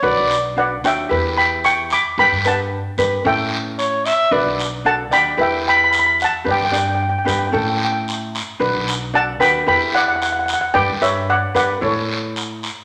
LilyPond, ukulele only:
\new Staff \with { instrumentName = "Ukulele" } { \time 4/4 \key b \minor \tempo 4 = 112 <d' fis' b'>8 r8 <d' fis' b'>8 <d' fis' cis''>8 <e' g' b'>4. r8 | <d' g' b'>8 <d' g' b'>8 r8 <d' g' b'>8 <cis' e' a'>4. r8 | <d' fis' b'>8 r8 <d' fis' a'>8 <d' fis' d''>8 <e' g' b'>4. r8 | <d' g' b'>8 <d' g' d''>8 r8 <d' g' b'>8 <cis' e' a'>4. r8 |
<d' fis' b'>8 r8 <d' fis' d''>8 <d' fis' b'>8 <e' g' b'>4. r8 | <d' g' b'>8 <d' g' b'>8 r8 <d' g' b'>8 <e' a' cis''>4. r8 | }